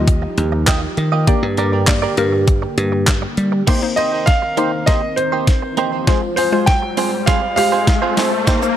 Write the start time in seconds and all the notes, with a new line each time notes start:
Already playing: D#2 F3 G3 D#4 F4 G4 D#5
0.07 muted clean electric guitar stroke, kick, closed hi-hat
0.22 muted clean electric guitar stroke
0.38 D#2, closed hi-hat
0.52 muted clean electric guitar stroke
0.67 A#3 F4 G4 D#5, kick, snare, clap, closed hi-hat
0.82 muted clean electric guitar stroke
0.97 D#3, muted clean electric guitar stroke, closed hi-hat
1.12 A#3 F4 G4 D#5
1.27 D3 A#3 D4 G4 A#4 D5, kick, closed hi-hat
1.43 G2
1.57 G2 D4 G4 A#4 D5, closed hi-hat
1.72 D4 G4 A#4 D5
1.87 A#3 G4 D5, muted clean electric guitar stroke, kick, snare, clap, closed hi-hat
2.02 D4 G4 A#4 D5
2.17 G2 A#3 G4 A#4, closed hi-hat
2.32 muted clean electric guitar stroke
2.47 muted clean electric guitar stroke, kick, closed hi-hat
2.62 muted clean electric guitar stroke
2.78 G2, closed hi-hat
2.92 muted clean electric guitar stroke
3.07 muted clean electric guitar stroke, kick, snare, clap, closed hi-hat
3.22 muted clean electric guitar stroke
3.37 G3, closed hi-hat
3.52 muted clean electric guitar stroke
3.67 D#3 A#3 D#4 G4 A#4 C5, kick, snare, closed hi-hat, crash, riser
3.82 A#3 D#4 C5, muted clean electric guitar stroke
3.96 A#3 D#4 G4 C5 D#5, closed hi-hat
4.12 A#3 D#4 G4 C5
4.26 F5, kick, snare, closed hi-hat
4.42 muted clean electric guitar stroke
4.57 A#3 D#4 G4 C5, closed hi-hat
4.72 muted clean electric guitar stroke
4.86 A#3 D#4 G4 C5 D#5, kick, snare, closed hi-hat
5.02 muted clean electric guitar stroke
5.16 C5, muted clean electric guitar stroke, closed hi-hat
5.32 A#3 D#4 G4 C5
5.47 muted clean electric guitar stroke, kick, snare, closed hi-hat
5.62 muted clean electric guitar stroke
5.77 A#3 D#4 G4 C5, closed hi-hat
5.92 A#3 D#4 G4 C5
6.07 G#3 C4 F4 G#4 C5, kick, snare, closed hi-hat
6.22 muted clean electric guitar stroke
6.36 C4 F4 G#4 C5, open hi-hat
6.52 G#3 C4 F4 G#4 C5
6.66 G5, kick, snare, closed hi-hat
6.82 muted clean electric guitar stroke
6.97 C4 F4 G#4 C5, open hi-hat
7.12 muted clean electric guitar stroke
7.26 C4 F4 G#4 C5 F5, kick, snare, closed hi-hat
7.42 muted clean electric guitar stroke
7.56 G#3 F4 G4 F5, muted clean electric guitar stroke, open hi-hat
7.72 C4 F4 G#4 C5
7.87 muted clean electric guitar stroke, kick, snare, closed hi-hat
8.02 C4 F4 G#4 C5
8.17 C4 F4 G#4 C5, snare, open hi-hat
8.32 muted clean electric guitar stroke
8.47 A#3 D#4 G4 C5, kick, snare, closed hi-hat, shaker
8.62 A#3 D#4 C5, muted clean electric guitar stroke, shaker